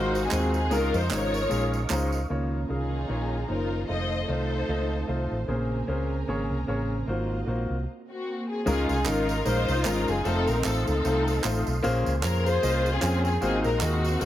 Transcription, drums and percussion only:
0.15 tambourine medium
0.31 clap loud
0.31 tambourine loud
0.54 tambourine medium
0.71 tambourine medium
0.94 tambourine medium
1.11 clap loud
1.11 tambourine loud
1.34 tambourine medium
1.51 tambourine medium
1.74 tambourine medium
1.90 clap loud
1.90 tambourine loud
2.12 tambourine medium
8.67 tambourine medium
8.89 tambourine medium
9.06 clap loud
9.06 tambourine loud
9.29 tambourine medium
9.46 tambourine medium
9.68 tambourine medium
9.85 clap loud
9.85 tambourine loud
10.08 tambourine medium
10.25 tambourine medium
10.47 tambourine medium
10.64 clap loud
10.64 tambourine loud
10.87 tambourine medium
11.05 tambourine medium
11.28 tambourine medium
11.44 clap loud
11.44 tambourine loud
11.67 tambourine medium
11.84 tambourine medium
12.06 tambourine medium
12.23 clap loud
12.23 tambourine loud
12.46 tambourine medium
12.63 tambourine medium
12.86 tambourine medium
13.02 clap loud
13.02 tambourine loud
13.25 tambourine medium
13.42 tambourine medium
13.64 tambourine medium
13.81 clap loud
13.81 tambourine loud
14.05 tambourine medium
14.21 tambourine medium

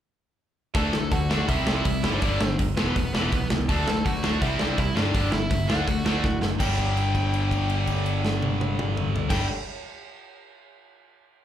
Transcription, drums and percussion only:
0.75 kick loud
0.75 open hi-hat medium
0.93 snare loud
1.12 kick loud
1.12 open hi-hat medium
1.31 snare loud
1.49 kick loud
1.49 open hi-hat medium
1.67 snare loud
1.85 kick loud
1.85 open hi-hat medium
2.04 snare loud
2.22 kick loud
2.22 open hi-hat medium
2.41 snare loud
2.59 kick loud
2.59 open hi-hat medium
2.77 snare loud
2.96 kick loud
2.96 open hi-hat medium
3.15 snare loud
3.32 kick loud
3.32 open hi-hat soft
3.50 snare loud
3.69 kick loud
3.69 open hi-hat medium
3.88 snare loud
4.06 kick loud
4.06 open hi-hat medium
4.24 snare loud
4.42 kick loud
4.42 open hi-hat medium
4.59 snare loud
4.78 kick loud
4.78 open hi-hat medium
4.97 snare loud
5.15 kick loud
5.15 open hi-hat medium
5.32 snare loud
5.51 kick loud
5.51 open hi-hat medium
5.70 snare loud
5.88 kick loud
5.88 open hi-hat medium
6.06 snare loud
6.24 kick loud
6.24 snare medium
6.42 snare medium
6.60 kick loud
6.60 crash loud
6.78 kick medium
6.78 crash soft
6.97 crash soft
7.15 kick medium
7.15 crash medium
7.34 crash medium
7.51 kick medium
7.51 crash soft
7.70 crash medium
7.87 kick medium
7.87 crash medium
8.06 crash medium
8.25 snare medium
8.42 high tom medium
8.61 high tom loud
8.79 mid tom loud
8.97 mid tom medium
9.16 floor tom loud
9.30 kick loud
9.30 snare loud
9.30 crash loud

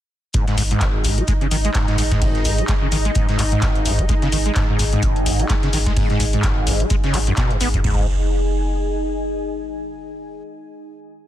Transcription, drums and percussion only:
0.34 kick loud
0.34 closed hi-hat medium
0.34 shaker medium
0.48 snare soft
0.48 closed hi-hat soft
0.58 open hi-hat medium
0.58 shaker medium
0.71 closed hi-hat medium
0.81 kick loud
0.81 snare loud
0.81 clap loud
0.81 closed hi-hat medium
0.81 shaker medium
1.04 open hi-hat medium
1.04 shaker medium
1.18 closed hi-hat medium
1.28 kick loud
1.28 closed hi-hat medium
1.28 shaker medium
1.41 closed hi-hat soft
1.51 open hi-hat loud
1.51 shaker medium
1.65 closed hi-hat medium
1.74 kick loud
1.74 snare loud
1.74 clap loud
1.74 closed hi-hat medium
1.74 shaker medium
1.88 snare medium
1.88 closed hi-hat soft
1.98 open hi-hat medium
1.98 shaker medium
2.11 kick medium
2.11 snare medium
2.11 closed hi-hat medium
2.22 kick loud
2.22 closed hi-hat medium
2.22 open hi-hat medium
2.35 snare soft
2.35 closed hi-hat soft
2.45 open hi-hat medium
2.45 shaker medium
2.58 closed hi-hat soft
2.68 kick loud
2.68 snare loud
2.68 clap loud
2.68 closed hi-hat medium
2.68 shaker medium
2.92 open hi-hat medium
2.92 shaker medium
3.05 closed hi-hat medium
3.15 kick loud
3.15 closed hi-hat medium
3.15 shaker medium
3.29 snare medium
3.29 closed hi-hat soft
3.38 clap medium
3.38 open hi-hat loud
3.38 shaker medium
3.52 closed hi-hat medium
3.62 kick loud
3.62 snare loud
3.62 clap loud
3.62 closed hi-hat medium
3.62 shaker medium
3.75 closed hi-hat soft
3.85 open hi-hat medium
3.85 shaker medium
3.99 kick medium
3.99 closed hi-hat medium
4.09 kick loud
4.09 closed hi-hat medium
4.09 shaker medium
4.22 snare soft
4.22 closed hi-hat soft
4.32 open hi-hat loud
4.32 shaker medium
4.46 closed hi-hat soft
4.55 kick loud
4.55 snare loud
4.55 clap loud
4.55 closed hi-hat medium
4.55 shaker medium
4.79 open hi-hat medium
4.79 shaker medium
4.93 closed hi-hat medium
5.03 kick loud
5.03 closed hi-hat medium
5.03 shaker medium
5.16 closed hi-hat soft
5.26 open hi-hat loud
5.26 shaker medium
5.40 closed hi-hat soft
5.49 kick loud
5.49 snare loud
5.49 clap loud
5.49 closed hi-hat medium
5.49 shaker medium
5.63 snare medium
5.63 closed hi-hat soft
5.73 open hi-hat loud
5.73 shaker medium
5.86 kick medium
5.86 snare medium
5.86 closed hi-hat medium
5.96 kick loud
5.96 closed hi-hat medium
5.96 open hi-hat medium
6.10 snare medium
6.10 closed hi-hat soft
6.20 open hi-hat loud
6.20 shaker medium
6.33 closed hi-hat soft
6.43 kick loud
6.43 snare loud
6.43 clap loud
6.43 closed hi-hat medium
6.43 shaker medium
6.67 open hi-hat loud
6.67 shaker medium
6.80 closed hi-hat soft
6.90 kick loud
6.90 closed hi-hat medium
6.90 shaker medium
7.04 snare medium
7.04 closed hi-hat soft
7.13 clap medium
7.13 open hi-hat loud
7.13 shaker medium
7.27 closed hi-hat medium
7.37 kick loud
7.37 snare loud
7.37 clap loud
7.37 closed hi-hat medium
7.37 shaker medium
7.51 closed hi-hat soft
7.61 open hi-hat medium
7.61 shaker medium
7.74 kick medium
7.74 closed hi-hat soft
7.84 kick loud
7.84 floor tom loud
7.84 crash medium

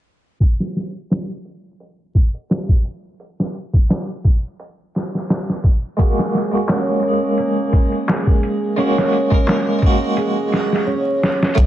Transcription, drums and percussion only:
0.40 kick medium
0.40 closed hi-hat medium
0.60 snare soft
0.75 snare soft
0.75 closed hi-hat medium
1.10 snare loud
1.10 closed hi-hat medium
1.45 closed hi-hat medium
1.80 closed hi-hat medium
2.15 kick medium
2.15 closed hi-hat soft
2.34 closed hi-hat soft
2.50 snare loud
2.50 closed hi-hat medium
2.69 kick medium
2.85 closed hi-hat medium
3.20 closed hi-hat medium
3.40 snare soft
3.55 closed hi-hat medium
3.73 kick medium
3.89 snare loud
3.89 open hi-hat medium
4.24 kick medium
4.24 closed hi-hat medium
4.60 closed hi-hat medium
4.95 snare soft
4.95 closed hi-hat medium
5.15 snare soft
5.29 snare medium
5.29 closed hi-hat medium
5.49 snare soft
5.64 kick medium
5.64 closed hi-hat medium
5.98 kick loud
5.98 closed hi-hat medium
6.19 snare soft
6.33 snare soft
6.33 closed hi-hat medium
6.68 snare loud
6.68 closed hi-hat medium
6.68 darbuka tek medium
7.03 closed hi-hat medium
7.38 closed hi-hat medium
7.73 kick medium
7.73 closed hi-hat medium
7.92 closed hi-hat soft
8.08 snare loud
8.08 closed hi-hat medium
8.08 darbuka tek medium
8.27 kick medium
8.43 closed hi-hat medium
8.78 closed hi-hat medium
8.98 snare soft
9.13 closed hi-hat medium
9.31 kick medium
9.47 snare loud
9.47 open hi-hat medium
9.47 darbuka tek medium
9.82 kick medium
9.82 closed hi-hat medium
10.17 closed hi-hat medium
10.52 snare soft
10.52 closed hi-hat medium
10.73 snare soft
11.23 snare medium
11.43 snare medium
11.57 kick loud
11.57 closed hi-hat medium

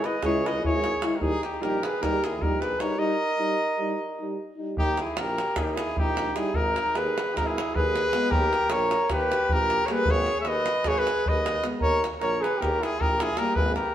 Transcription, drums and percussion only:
0.04 davul high medium
0.23 davul high medium
0.23 davul low medium
0.46 davul high medium
0.55 davul high soft
0.65 davul low medium
0.84 davul high medium
1.02 davul high medium
1.21 davul low medium
1.43 davul high medium
1.54 davul high soft
1.63 davul high medium
1.83 davul high medium
2.03 davul high medium
2.03 davul low medium
2.24 davul high medium
2.34 davul high soft
2.42 davul low medium
2.62 davul high medium
2.80 davul high medium
4.77 davul low medium
4.97 davul high medium
5.07 davul high soft
5.17 davul high medium
5.27 davul high soft
5.38 davul high medium
5.56 davul high medium
5.56 davul low medium
5.67 davul high soft
5.77 davul high medium
5.97 davul low medium
6.17 davul high medium
6.36 davul high medium
6.46 davul high soft
6.54 davul low medium
6.76 davul high medium
6.86 davul high soft
6.95 davul high medium
7.07 davul high soft
7.18 davul high medium
7.37 davul high medium
7.37 davul low medium
7.47 davul high soft
7.58 davul high medium
7.75 davul low medium
7.96 davul high medium
8.13 davul high medium
8.23 davul high soft
8.31 davul low loud
8.53 davul high medium
8.62 davul high soft
8.70 davul high medium
8.81 davul high soft
8.91 davul high medium
9.10 davul high medium
9.10 davul low medium
9.21 davul high soft
9.32 davul high medium
9.49 davul low loud
9.70 davul high medium
9.88 davul high medium
9.98 davul high soft
10.05 davul low loud
10.16 davul high soft
10.26 davul high medium
10.45 davul high medium
10.66 davul high medium
10.84 davul high medium
10.84 davul low medium
10.97 davul high soft
11.07 davul high medium
11.16 davul high soft
11.26 davul low medium
11.36 davul high soft
11.46 davul high medium
11.56 davul high soft
11.64 davul high medium
11.81 davul low medium
12.04 davul high medium
12.13 davul high soft
12.21 davul high medium
12.33 davul high soft
12.44 davul high medium
12.62 davul high medium
12.62 davul low medium
12.73 davul high soft
12.83 davul high medium
13.01 davul low medium
13.20 davul high medium
13.37 davul high medium
13.48 davul high soft
13.56 davul low loud
13.76 davul high medium
13.85 davul high soft

